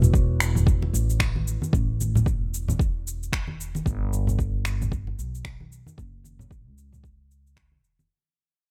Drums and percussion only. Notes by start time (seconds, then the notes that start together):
0.02 low conga, cabasa
0.14 kick, cabasa
0.40 finger snap, cabasa
0.55 high conga, low conga, cabasa
0.67 kick, cabasa
0.82 muted conga
0.95 cabasa
1.10 cabasa
1.20 finger snap, kick, cabasa
1.36 high conga
1.48 cabasa
1.62 high conga, cabasa
1.73 kick, cabasa
2.01 high conga, cabasa
2.15 low conga, cabasa
2.26 kick, cabasa
2.54 cabasa
2.68 muted conga, high conga, low conga, cabasa
2.79 kick, cabasa
3.07 cabasa
3.23 cabasa
3.33 finger snap, kick, cabasa
3.47 high conga
3.61 cabasa
3.75 muted conga, high conga, cabasa
3.86 kick, cabasa
4.13 high conga, cabasa
4.27 low conga, cabasa
4.39 kick, cabasa
4.65 finger snap, cabasa
4.81 high conga, low conga, cabasa
4.92 kick, cabasa
5.07 muted conga
5.19 cabasa
5.35 cabasa
5.45 finger snap, kick, cabasa
5.60 high conga
5.72 cabasa
5.87 high conga, cabasa
5.98 kick, cabasa
6.24 high conga, cabasa
6.39 low conga, cabasa
6.51 kick, cabasa
6.78 cabasa
6.92 muted conga, high conga, low conga, cabasa
7.04 kick, cabasa
7.31 cabasa
7.47 cabasa
7.57 finger snap, kick, cabasa
7.72 high conga
7.84 cabasa
7.99 muted conga, high conga, cabasa